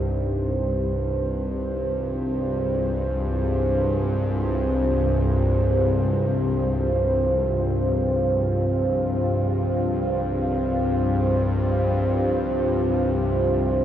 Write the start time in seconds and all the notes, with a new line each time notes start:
Already playing: C2 G2 D#4 G4 C5
0.07 C4
0.67 F4
0.97 G#4
10.36 G4